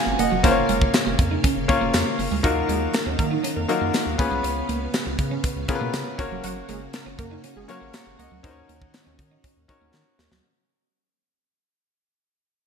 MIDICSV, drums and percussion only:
0, 0, Header, 1, 2, 480
1, 0, Start_track
1, 0, Key_signature, -6, "minor"
1, 0, Tempo, 500000
1, 421, Time_signature, 4, 2, 24, 8
1, 12159, End_track
2, 0, Start_track
2, 0, Title_t, "Drums"
2, 185, Note_on_c, 9, 42, 70
2, 281, Note_off_c, 9, 42, 0
2, 422, Note_on_c, 9, 36, 114
2, 422, Note_on_c, 9, 42, 94
2, 518, Note_off_c, 9, 36, 0
2, 518, Note_off_c, 9, 42, 0
2, 663, Note_on_c, 9, 42, 73
2, 759, Note_off_c, 9, 42, 0
2, 783, Note_on_c, 9, 36, 85
2, 879, Note_off_c, 9, 36, 0
2, 901, Note_on_c, 9, 42, 84
2, 903, Note_on_c, 9, 54, 77
2, 905, Note_on_c, 9, 38, 114
2, 905, Note_on_c, 9, 39, 74
2, 997, Note_off_c, 9, 42, 0
2, 999, Note_off_c, 9, 54, 0
2, 1001, Note_off_c, 9, 38, 0
2, 1001, Note_off_c, 9, 39, 0
2, 1141, Note_on_c, 9, 36, 100
2, 1141, Note_on_c, 9, 42, 67
2, 1237, Note_off_c, 9, 36, 0
2, 1237, Note_off_c, 9, 42, 0
2, 1383, Note_on_c, 9, 36, 99
2, 1384, Note_on_c, 9, 42, 105
2, 1479, Note_off_c, 9, 36, 0
2, 1480, Note_off_c, 9, 42, 0
2, 1622, Note_on_c, 9, 36, 100
2, 1622, Note_on_c, 9, 42, 73
2, 1718, Note_off_c, 9, 36, 0
2, 1718, Note_off_c, 9, 42, 0
2, 1862, Note_on_c, 9, 42, 105
2, 1862, Note_on_c, 9, 54, 66
2, 1863, Note_on_c, 9, 39, 90
2, 1864, Note_on_c, 9, 38, 127
2, 1958, Note_off_c, 9, 42, 0
2, 1958, Note_off_c, 9, 54, 0
2, 1959, Note_off_c, 9, 39, 0
2, 1960, Note_off_c, 9, 38, 0
2, 2106, Note_on_c, 9, 46, 64
2, 2202, Note_off_c, 9, 46, 0
2, 2343, Note_on_c, 9, 36, 116
2, 2345, Note_on_c, 9, 42, 91
2, 2439, Note_off_c, 9, 36, 0
2, 2441, Note_off_c, 9, 42, 0
2, 2585, Note_on_c, 9, 42, 68
2, 2681, Note_off_c, 9, 42, 0
2, 2822, Note_on_c, 9, 39, 74
2, 2823, Note_on_c, 9, 42, 82
2, 2825, Note_on_c, 9, 54, 73
2, 2827, Note_on_c, 9, 38, 120
2, 2918, Note_off_c, 9, 39, 0
2, 2919, Note_off_c, 9, 42, 0
2, 2921, Note_off_c, 9, 54, 0
2, 2923, Note_off_c, 9, 38, 0
2, 3062, Note_on_c, 9, 36, 99
2, 3062, Note_on_c, 9, 42, 65
2, 3158, Note_off_c, 9, 36, 0
2, 3158, Note_off_c, 9, 42, 0
2, 3306, Note_on_c, 9, 42, 104
2, 3402, Note_off_c, 9, 42, 0
2, 3543, Note_on_c, 9, 42, 71
2, 3639, Note_off_c, 9, 42, 0
2, 3784, Note_on_c, 9, 42, 106
2, 3784, Note_on_c, 9, 54, 61
2, 3785, Note_on_c, 9, 39, 87
2, 3786, Note_on_c, 9, 38, 120
2, 3880, Note_off_c, 9, 42, 0
2, 3880, Note_off_c, 9, 54, 0
2, 3881, Note_off_c, 9, 39, 0
2, 3882, Note_off_c, 9, 38, 0
2, 4023, Note_on_c, 9, 36, 109
2, 4028, Note_on_c, 9, 42, 67
2, 4119, Note_off_c, 9, 36, 0
2, 4124, Note_off_c, 9, 42, 0
2, 4264, Note_on_c, 9, 42, 93
2, 4360, Note_off_c, 9, 42, 0
2, 4504, Note_on_c, 9, 42, 70
2, 4600, Note_off_c, 9, 42, 0
2, 4740, Note_on_c, 9, 42, 78
2, 4742, Note_on_c, 9, 54, 77
2, 4744, Note_on_c, 9, 38, 112
2, 4746, Note_on_c, 9, 39, 73
2, 4836, Note_off_c, 9, 42, 0
2, 4838, Note_off_c, 9, 54, 0
2, 4840, Note_off_c, 9, 38, 0
2, 4842, Note_off_c, 9, 39, 0
2, 4979, Note_on_c, 9, 42, 67
2, 4980, Note_on_c, 9, 36, 98
2, 5075, Note_off_c, 9, 42, 0
2, 5076, Note_off_c, 9, 36, 0
2, 5221, Note_on_c, 9, 42, 106
2, 5222, Note_on_c, 9, 36, 106
2, 5317, Note_off_c, 9, 42, 0
2, 5318, Note_off_c, 9, 36, 0
2, 5457, Note_on_c, 9, 42, 70
2, 5460, Note_on_c, 9, 36, 101
2, 5553, Note_off_c, 9, 42, 0
2, 5556, Note_off_c, 9, 36, 0
2, 5698, Note_on_c, 9, 42, 102
2, 5699, Note_on_c, 9, 54, 65
2, 5701, Note_on_c, 9, 38, 122
2, 5705, Note_on_c, 9, 39, 88
2, 5794, Note_off_c, 9, 42, 0
2, 5795, Note_off_c, 9, 54, 0
2, 5797, Note_off_c, 9, 38, 0
2, 5801, Note_off_c, 9, 39, 0
2, 5941, Note_on_c, 9, 36, 104
2, 5942, Note_on_c, 9, 42, 66
2, 6037, Note_off_c, 9, 36, 0
2, 6038, Note_off_c, 9, 42, 0
2, 6179, Note_on_c, 9, 42, 99
2, 6275, Note_off_c, 9, 42, 0
2, 6419, Note_on_c, 9, 42, 71
2, 6515, Note_off_c, 9, 42, 0
2, 6657, Note_on_c, 9, 42, 78
2, 6659, Note_on_c, 9, 54, 73
2, 6661, Note_on_c, 9, 38, 115
2, 6666, Note_on_c, 9, 39, 72
2, 6753, Note_off_c, 9, 42, 0
2, 6755, Note_off_c, 9, 54, 0
2, 6757, Note_off_c, 9, 38, 0
2, 6762, Note_off_c, 9, 39, 0
2, 6899, Note_on_c, 9, 42, 66
2, 6900, Note_on_c, 9, 36, 99
2, 6995, Note_off_c, 9, 42, 0
2, 6996, Note_off_c, 9, 36, 0
2, 7140, Note_on_c, 9, 42, 100
2, 7236, Note_off_c, 9, 42, 0
2, 7379, Note_on_c, 9, 42, 73
2, 7475, Note_off_c, 9, 42, 0
2, 7621, Note_on_c, 9, 42, 99
2, 7621, Note_on_c, 9, 54, 64
2, 7623, Note_on_c, 9, 38, 119
2, 7623, Note_on_c, 9, 39, 86
2, 7717, Note_off_c, 9, 42, 0
2, 7717, Note_off_c, 9, 54, 0
2, 7719, Note_off_c, 9, 38, 0
2, 7719, Note_off_c, 9, 39, 0
2, 7867, Note_on_c, 9, 42, 66
2, 7963, Note_off_c, 9, 42, 0
2, 8102, Note_on_c, 9, 36, 117
2, 8103, Note_on_c, 9, 42, 91
2, 8198, Note_off_c, 9, 36, 0
2, 8199, Note_off_c, 9, 42, 0
2, 8345, Note_on_c, 9, 42, 69
2, 8441, Note_off_c, 9, 42, 0
2, 8463, Note_on_c, 9, 36, 88
2, 8559, Note_off_c, 9, 36, 0
2, 8580, Note_on_c, 9, 42, 77
2, 8582, Note_on_c, 9, 54, 73
2, 8585, Note_on_c, 9, 38, 109
2, 8587, Note_on_c, 9, 39, 72
2, 8676, Note_off_c, 9, 42, 0
2, 8678, Note_off_c, 9, 54, 0
2, 8681, Note_off_c, 9, 38, 0
2, 8683, Note_off_c, 9, 39, 0
2, 8820, Note_on_c, 9, 42, 65
2, 8821, Note_on_c, 9, 36, 96
2, 8916, Note_off_c, 9, 42, 0
2, 8917, Note_off_c, 9, 36, 0
2, 9062, Note_on_c, 9, 42, 107
2, 9063, Note_on_c, 9, 36, 101
2, 9158, Note_off_c, 9, 42, 0
2, 9159, Note_off_c, 9, 36, 0
2, 9302, Note_on_c, 9, 42, 65
2, 9303, Note_on_c, 9, 36, 98
2, 9398, Note_off_c, 9, 42, 0
2, 9399, Note_off_c, 9, 36, 0
2, 9542, Note_on_c, 9, 38, 61
2, 9543, Note_on_c, 9, 39, 85
2, 9638, Note_off_c, 9, 38, 0
2, 9639, Note_off_c, 9, 39, 0
2, 9783, Note_on_c, 9, 38, 97
2, 9879, Note_off_c, 9, 38, 0
2, 9903, Note_on_c, 9, 38, 92
2, 9999, Note_off_c, 9, 38, 0
2, 12159, End_track
0, 0, End_of_file